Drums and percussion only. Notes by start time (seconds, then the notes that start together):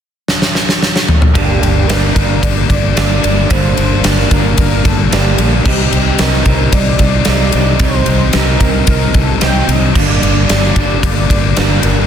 0.28 snare
0.42 snare
0.55 snare
0.69 snare
0.82 snare
0.96 snare
1.08 mid tom
1.22 mid tom
1.35 kick, ride
1.63 ride
1.90 snare, ride
2.16 kick, ride
2.43 kick, ride
2.70 kick, ride
2.97 snare, ride
3.24 ride
3.50 kick, ride
3.77 ride
4.04 snare, ride
4.19 snare
4.31 kick, ride
4.58 kick, ride
4.85 kick, ride
5.12 snare, ride
5.38 ride
5.65 kick, crash
5.93 ride
6.19 snare, ride
6.33 snare
6.46 kick, ride
6.72 kick, ride
6.99 kick, ride
7.25 snare, ride
7.52 ride
7.79 kick, ride
8.06 ride
8.33 snare, ride
8.60 kick, ride
8.87 kick, ride
9.14 kick, ride
9.41 snare, ride
9.69 ride
9.95 kick, crash
10.23 ride
10.49 snare, ride
10.64 snare
10.76 kick, ride
11.03 kick, ride
11.30 kick, ride
11.57 snare, ride
11.83 ride